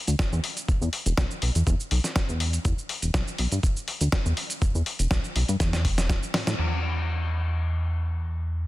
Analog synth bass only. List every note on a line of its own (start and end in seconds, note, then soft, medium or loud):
0.08 0.15 D2 medium
0.32 0.40 E2 medium
0.68 0.79 E2 soft
0.81 0.89 E2 medium
1.06 1.14 E1 medium
1.18 1.26 B1 loud
1.42 1.51 B1 medium
1.55 1.63 E2 medium
1.67 1.75 E2 loud
1.92 2.00 B1 medium
2.29 2.59 E2 medium
2.65 2.74 E2 medium
3.03 3.10 E1 medium
3.14 3.23 B1 loud
3.39 3.47 B1 medium
3.52 3.59 G2 loud
4.01 4.09 D2 medium
4.26 4.33 E2 medium
4.62 4.72 E2 soft
4.75 4.83 E2 medium
5.00 5.07 E1 medium
5.11 5.20 B1 loud
5.36 5.44 B1 medium
5.49 5.56 G2 medium
5.60 5.86 E2 loud
5.85 6.15 E1 medium
6.34 6.45 A2 soft
6.47 6.55 A2 loud
6.59 8.67 E2 medium